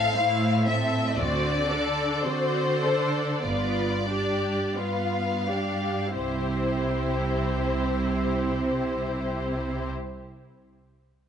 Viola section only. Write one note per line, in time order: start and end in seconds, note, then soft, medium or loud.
0.00 0.16 C4 soft
0.15 0.66 A3 soft
0.15 0.66 E4 soft
0.66 1.17 C4 soft
1.18 1.67 C4 soft
1.18 1.67 F#4 soft
1.70 2.25 D4 soft
1.70 2.25 A4 soft
2.25 2.83 C4 soft
2.25 2.83 F#4 soft
2.84 3.46 D4 soft
2.84 3.46 A4 soft
3.44 4.06 B3 soft
3.44 4.05 F4 soft
4.10 4.77 D4 soft
4.10 4.76 G4 soft
4.76 5.47 B3 soft
4.76 5.47 F4 soft
5.47 6.17 D4 soft
5.47 6.17 G4 soft
6.15 9.89 C4 soft
6.15 9.88 E4 soft